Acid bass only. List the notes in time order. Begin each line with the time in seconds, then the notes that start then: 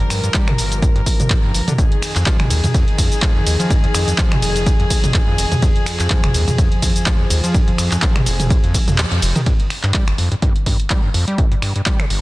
0.10 G2
0.24 G2
0.34 G3
0.48 C3
0.58 G1
0.82 G2
0.96 G2
1.20 G2
1.30 G2
1.44 G2
1.54 G1
1.68 D3
1.78 F2
2.16 F2
2.26 F3
2.40 F1
2.50 D#2
2.64 F2
2.74 F2
2.98 F2
3.22 F3
3.36 F2
3.46 D#2
3.60 F3
3.70 F2
3.84 F2
3.94 F2
4.08 F2
4.18 F3
4.32 A#2
4.42 F1
4.66 F2
4.80 F2
5.04 F2
5.14 F2
5.28 F2
5.38 F1
5.52 F2
5.62 F2
6.00 F2
6.10 F3
6.24 F1
6.34 D#2
6.48 F2
6.58 F2
6.82 F2
7.06 F3
7.20 F2
7.30 D#2
7.44 F3
7.54 F2
7.68 F2
7.78 F2
7.92 F2
8.02 F3
8.16 A#2
8.26 F1
8.50 F2
8.64 F2
8.74 F3
8.88 F2
8.98 D#2
9.12 F2
9.22 F1
9.36 D#3
9.46 G2
9.84 G2
9.94 G3
10.08 G1
10.18 F2
10.32 G2
10.42 G2
10.66 G2
10.90 G3
11.04 G2
11.14 F2
11.28 G3
11.38 G2
11.52 G2
11.62 G2
11.76 G2
11.86 G3
12.00 C3
12.10 G1